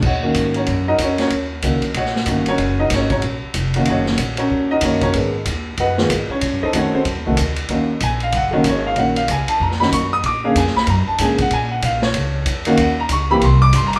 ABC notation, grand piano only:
X:1
M:4/4
L:1/8
Q:"Swing" 1/4=188
K:Ebm
V:1 name="Grand piano"
[Gdeg]3 [DGBd]2 [EGBe] [DGBd] [DGBd] | z4 [Gdeg]3 [DGBd]- | [DGBd] [EGBe] [DGBd] [DGBd] z4 | [Gdeg]3 [DGBd]2 [EGBe] [Bd] [DGBd] |
z4 [Gceg]3 [Dd]- | [Dd] [E=A=ce] [Dd] [=C^FAc] z4 | z2 a f [fg] [=AB] d f | g f a =a b c' d' e' |
=d' f a c' b =a _a g | a g f ^c3 z2 | g b d' c' =c' =d' (3c' b d' |]
V:2 name="Grand piano"
z [E,B,DG]3 z4 | z2 [E,B,DG] z3 [E,B,DG] z | z6 z [E,B,DG]- | [E,B,DG]2 z4 [E,B,DG]2 |
[E,A,C] z4 [E,A,CF] z2 | z2 [E,=A,=C^F] z2 [E,A,CF] z2 | [E,B,DG] z4 [E,B,DG] z2 | [E,B,DG] z4 [E,B,DG] z2 |
z [=D,B,^CA] z4 [D,B,CA] z | z6 z [E,B,^CG] | z3 [_F,B,=C=G] z4 |]